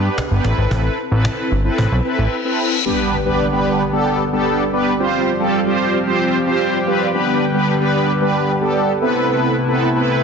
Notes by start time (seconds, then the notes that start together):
Already playing: B3 D4 G4 B4
0.18 cajon bass, cajon slap
0.31 G1 B3 D4 G4 B4
0.44 A1 C4 E4 A4 B4, cajon slap
0.58 G#1
0.71 A1, cajon bass
0.98 cajon slap
1.11 A1 C4 E4 A4 B4
1.25 cajon bass, cajon slap
1.52 G1, cajon slap
1.65 C4 E4 A4 B4
1.78 A1, cajon bass, reverse cymbal
1.92 B1
2.05 C4 E4 A4 B4, cajon slap
2.18 A1
2.45 C4 E4 A4 B4
2.85 D3 G3 B3 D4 G4 B4, impact
3.25 G3 B3 D4 G4 B4
3.52 G3 B3 D4 G4 B4
3.92 G3 B3 D4 G4 A4
4.33 G3 B3 D4 G4 A4
4.73 G3 B3 D4 G4 B4
4.99 F3 G3 C4 F4 G4 C5
5.40 G3 C4 F4 G4 A4
5.66 G3 C4 F4 G4 C5
6.07 G3 C4 F4 G4 C5
6.47 G3 C4 F4 G4 C5
6.87 G3 C4 F4 G4 B4
7.14 D3 G3 B3 D4 G4 B4
7.54 G3 B3 D4 G4 B4
7.81 G3 B3 D4 G4 B4
8.21 G3 B3 D4 G4 B4
8.61 G3 B3 D4 G4 A4
9.01 C3 A3 B3 C4 E4 A4 B4
9.68 B3 C4 E4 A4 B4
9.95 B3 C4 E4 A4 B4